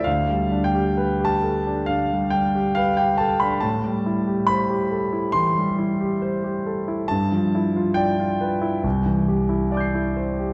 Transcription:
\new Staff \with { instrumentName = "Grand piano" } { \time 4/4 \key g \mixolydian \tempo 4 = 68 << { \tuplet 3/2 { f''4 g''8~ g''8 a''4 } f''8 g''8 f''16 g''16 a''16 b''16 | a''4 b''4 c'''2 | a''4 g''4. r8 <e'' d''' g''' c''''>4 | } \\ { d,16 g16 d'16 g'16 b'16 g'16 a'16 d'16 d16 g16 d'16 g'16 b'16 g'16 a'16 d'16 | a,16 g16 e'16 g'16 c''16 g'16 a'16 e'16 e16 g16 e'16 g'16 c''16 g'16 a'16 e'16 | g,16 f16 e'16 f'16 d''16 f'16 b'16 e'16 c,16 e16 g'16 e'16 d''16 e'16 c''16 g'16 | } >> }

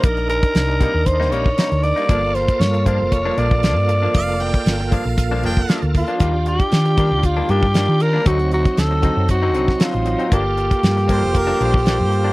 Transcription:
<<
  \new Staff \with { instrumentName = "Harmonica" } { \time 4/4 \key g \minor \tempo 4 = 117 r1 | r1 | f''8 g''4 f''4 g''8. r8. | r1 |
r1 | r4. c''8 bes'8 c''16 c''4~ c''16 | }
  \new Staff \with { instrumentName = "Tenor saxophone" } { \time 4/4 \key g \minor bes'8 bes'4. c''8 cis''4 d''8~ | d''8 c''8 cis''8 c''8 cis''8 d''4.~ | d''4. r2 f'8~ | f'8 g'4. f'8 g'4 bes'8 |
fis'8 fis'8 a'4 fis'4 f'4 | g'1 | }
  \new Staff \with { instrumentName = "Tonewheel organ" } { \time 4/4 \key g \minor <d' ees' bes'>1 | <bes f' a'>1~ | <bes f' a'>1 | <d' f' g'>1 |
<fis c' ees'>1 | <bes f' a'>1 | }
  \new Staff \with { instrumentName = "Clean electric guitar" } { \time 4/4 \key g \minor r4. <c g bes ees'>16 r8 <c g bes ees'>16 <c g bes ees'>16 r16 <c g bes ees'>16 r8 <g bes ees'>16 | <g, f bes d'>16 r4 r16 <g, f bes d'>16 r8 <g, f bes d'>16 <g, f bes d'>16 r16 <g, f bes d'>16 r8 <f bes d'>16 | r4. <g, f bes d'>16 r8 <g, f bes d'>16 <g, f bes d'>16 r16 <g, f bes d'>16 r8 <f bes d'>16 | <ees g bes d'>16 r4 r16 <ees g bes d'>16 r8 <ees g bes d'>16 <ees g bes d'>16 r16 <ees g bes d'>16 r8 <g bes d'>16 |
<d fis c' ees'>16 r4 r16 <d fis c' ees'>16 r8 <d fis c' ees'>16 <d fis c' ees'>16 r16 <d fis c' ees'>16 r8 <fis c' ees'>16 | <g, f bes d'>16 r4 r16 <g, f bes d'>16 r8 <g, f bes d'>16 <g, f bes d'>16 r16 <g, f bes d'>16 r8 <f bes d'>16 | }
  \new Staff \with { instrumentName = "Fingered electric bass" } { \clef bass \time 4/4 \key g \minor bes,,4 c,8. ees,8. bes,,8 r16 d,8 r16 | g,,4 g,8. f,,8. bes,,8. g,8. | f,,4 g,,8. bes,,8. f,,8 r16 d,8 r16 | ees,4 ees8. d,8. g,8. ees8. |
d,4 d,8. fis,8. c,8 r16 a,,8 r16 | g,,4 g,8. f,,8. bes,,8. g,8. | }
  \new DrumStaff \with { instrumentName = "Drums" } \drummode { \time 4/4 <hh bd>16 hh16 hh16 <hh bd>16 <hh sn>8 <hh bd>8 <hh bd>16 sn16 hh16 bd16 <hh sn>16 hh16 hh16 hh16 | <hh bd>8 <hh sn>16 <hh bd>16 <hh sn>16 hh16 <hh bd>8 <hh bd>8 hh16 bd16 <hh sn>8 hh8 | <hh bd>16 hh16 hh16 <hh bd>16 <hh sn>16 sn16 <hh bd>8 <hh bd>8 hh16 bd16 <hh sn>16 hh16 <hho bd>16 hh16 | <hh bd>8 hh16 <hh bd>16 <hh sn>16 hh16 <hh bd>8 <hh bd>8 hh16 bd16 <hh sn>8 hh8 |
<hh bd>16 hh16 hh16 <hh bd>16 <hh sn>8 <hh bd>8 <hh bd>8 hh16 <bd sn>16 <hh sn>16 hh16 hh16 hh16 | <hh bd>8 hh16 <hh bd>16 <hh sn>16 <hh sn>16 <hh bd>8 <hh bd>8 hh16 bd16 <hh sn>8 hh8 | }
>>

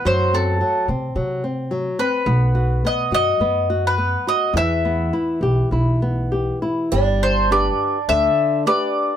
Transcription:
<<
  \new Staff \with { instrumentName = "Mandolin" } { \time 4/4 \key e \minor \tempo 4 = 104 c''8 a'4 r2 b'8~ | b'4 dis''8 dis''4~ dis''16 b'8. dis''8 | e''2.~ e''8 r8 | \key g \major r8 c''8 d''4 e''4 d''4 | }
  \new Staff \with { instrumentName = "Twelve-string acoustic guitar" } { \time 4/4 \key e \minor r1 | r1 | r1 | \key g \major d'1 | }
  \new Staff \with { instrumentName = "Nylon-string guitar" } { \time 4/4 \key e \minor fis8 c'8 fis8 c'8 fis8 c'8 fis8 c'8 | b8 fis'8 b8 fis'8 b8 fis'8 b8 fis'8 | e8 b8 e'8 g'8 e'8 b8 g'8 e'8 | \key g \major g4 <d' g' b'>4 d4 <d' g' b'>4 | }
  \new Staff \with { instrumentName = "Upright bass" } { \clef bass \time 4/4 \key e \minor fis,4. c8 c2 | b,,4. fis,8 fis,2 | e,4. b,,8 b,,2 | \key g \major g,,2 d,8 r4. | }
>>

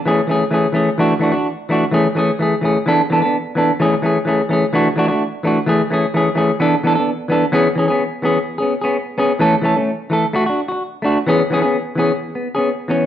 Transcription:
\new Staff \with { instrumentName = "Clean electric guitar" } { \time 4/4 \key a \major \tempo 4 = 128 <e a cis' gis'>16 r16 <e a cis' gis'>16 r16 <e a cis' gis'>16 r16 <e a cis' gis'>16 r16 <e a d' fis'>16 r16 <e a d' fis'>16 <d' fis'>16 r8 <e a d' fis'>16 r16 | <e a cis' gis'>16 r16 <e a cis' gis'>16 r16 <e a gis'>16 r16 <e a cis' gis'>16 r16 <e b d' a'>16 r16 <e b d' a'>16 <b d' a'>16 r8 <e b d' a'>16 r16 | <e a cis' gis'>16 r16 <e a cis' gis'>16 r16 <e a cis' gis'>16 r16 <e a cis' gis'>16 r16 <e a d' fis'>16 r16 <e a d' fis'>16 <a d' fis'>16 r8 <e a d' fis'>16 r16 | <e a gis'>16 r16 <e a cis' gis'>16 r16 <e a cis' gis'>16 r16 <e a cis' gis'>16 r16 <e b d' a'>16 r16 <e b d' a'>16 <b d' a'>16 r8 <e b d' a'>16 r16 |
<e b cis' gis'>16 r16 <e cis' gis'>16 <b cis' gis'>16 r8 <e b cis' gis'>16 r8 <b cis' gis'>16 r16 <b cis' gis'>16 r8 <b cis' gis'>16 r16 | <e a cis' a'>16 r16 <e a cis' a'>16 <a cis'>16 r8 <e a a'>16 r16 <a fis'>16 <d' fis'>16 r16 fis'16 r8 <a d' fis'>16 r16 | <e b cis' gis'>16 r16 <e b cis' gis'>16 <b cis' gis'>16 r8 <e b cis' gis'>16 r8 b16 r16 <b cis' gis'>16 r8 <e b cis'>16 r16 | }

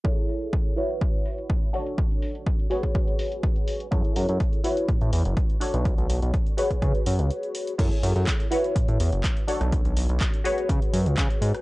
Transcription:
<<
  \new Staff \with { instrumentName = "Analog polysynth" } { \time 4/4 \key a \major \tempo 4 = 124 <e' gis' a' cis''>4. <e' fis' b' cis''>2 <d' fis' a' cis''>8~ | <d' fis' a' cis''>4. <fis' gis' b' cis''>2~ <fis' gis' b' cis''>8 | <e' gis' a' cis''>4. <e' fis' b' cis''>2 <d' fis' a' cis''>8~ | <d' fis' a' cis''>4. <fis' gis' b' cis''>2~ <fis' gis' b' cis''>8 |
<e' gis' a' cis''>4. <e' fis' b' cis''>2 <d' fis' a' cis''>8~ | <d' fis' a' cis''>4. <fis' gis' b' cis''>2~ <fis' gis' b' cis''>8 | }
  \new Staff \with { instrumentName = "Analog synth bass" } { \clef bass \time 4/4 \key a \major r1 | r1 | fis,16 r16 fis,16 fis,16 r4 a,16 a,16 e,16 fis,,16 r8. b,,16~ | b,,16 b,,16 b,,16 b,,16 r4 cis16 r16 fis,16 cis,16 r4 |
fis,16 r16 fis,16 fis,16 r4 a,16 a,16 e,16 fis,,16 r8. b,,16~ | b,,16 b,,16 b,,16 b,,16 r4 cis16 r16 fis,16 cis,16 cis16 r16 gis,16 r16 | }
  \new DrumStaff \with { instrumentName = "Drums" } \drummode { \time 4/4 bd8 hho16 hh16 bd8 hho16 hh16 bd16 hh16 hho16 hh16 bd16 hh16 hho16 hh16 | bd16 hh16 hho16 hh16 <hh bd>16 hh16 hho16 <hh bd>16 <hh bd>16 hh16 hho16 hh16 <hh bd>16 hh16 hho16 hh16 | <hh bd>16 hh16 hho16 hh16 <hh bd>16 hh16 hho16 hh16 <hh bd>16 hh16 hho16 hh16 <hh bd>16 hh16 hho16 hh16 | <hh bd>16 hh16 hho16 hh16 <hh bd>16 hh16 hho16 <hh bd>16 <hh bd>16 hh16 hho16 hh16 hh16 hh16 hho16 hh16 |
<cymc hh bd>16 hh16 hho16 hh16 <hc hh bd>16 hh16 hho16 hh16 <hh bd>16 hh16 hho16 hh16 <hc hh bd>16 hh16 hho16 <hh ss>16 | <hh bd>16 hh16 hho16 hh16 <hc hh bd>16 hh16 hho16 hh16 <hh bd>16 hh16 hho16 hh16 <hc hh bd>16 hh16 hho16 <hh ss>16 | }
>>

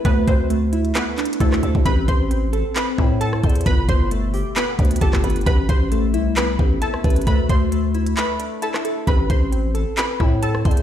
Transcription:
<<
  \new Staff \with { instrumentName = "Synth pluck" } { \time 4/4 \key a \minor \tempo 4 = 133 <b b'>8 <c' c''>4. <b b'>4 <a a'>4 | <b' b''>8 <c'' c'''>4. <b' b''>4 <a' a''>4 | <b' b''>8 <c'' c'''>4. <b' b''>4 <a' a''>4 | <b' b''>8 <c'' c'''>4. <b' b''>4 <a' a''>4 |
<b' b''>8 <c'' c'''>4. <b' b''>4 <a' a''>4 | <b' b''>8 <c'' c'''>4. <b' b''>4 <a' a''>4 | }
  \new Staff \with { instrumentName = "Synth keys" } { \time 4/4 \key a \minor a4 a8 e'8 a8 d'8 e'8 a'8 | c'4 c'8 a'8 c'8 e'8 a'8 c''8 | b,4 a8 g'8 b8 d'8 g'8 b'8 | b,4 a8 e'8 b8 c'8 e'8 b'8 |
a4 a8 e'8 a8 d'8 e'8 a'8 | c'4 c'8 a'8 c'8 e'8 a'8 c''8 | }
  \new Staff \with { instrumentName = "808-style bass" } { \clef bass \time 4/4 \key a \minor d,8 d,4. r4 d,8 d,16 d,16 | a,,8 a,,4~ a,,16 r8. a,4 e,8 | g,,8 g,,4~ g,,16 r8. d,8 g,,8 g,,8 | a,,8 a,,4 c,4 a,,8 r8 a,,8 |
d,8 d,4. r2 | a,,8 a,,4~ a,,16 r8. a,4 e,8 | }
  \new DrumStaff \with { instrumentName = "Drums" } \drummode { \time 4/4 <hh bd>8 <hh bd>8 hh8 hh16 hh16 \tuplet 3/2 { <hc hh>16 r16 r16 <hc hh>16 hh16 hh16 } <hh bd>16 <hc ss>16 hh16 bd16 | <hh bd>8 <hh bd>8 hh8 hh8 <hc hh>8 bd8 hh16 ss16 <hh bd>32 hh32 hh32 hh32 | <hh bd>8 <hh bd>8 hh8 hho8 <hc hh>8 <hh bd>32 hh32 hh32 hh32 <hh bd>16 <hc bd ss>16 hh32 hh32 hh32 hh32 | <hh bd>8 <hh bd>8 hh8 hh8 <hc hh>8 bd8 hh16 ss16 <hh bd>32 hh32 hh32 hh32 |
<hh bd>8 <hh bd>8 hh8 hh16 hh16 <hc hh>8 hh8 hh16 <hc ss>16 hh8 | <hh bd>8 <hh bd>8 hh8 hh8 <hc hh>8 bd8 hh16 ss16 <hh bd>32 hh32 hh16 | }
>>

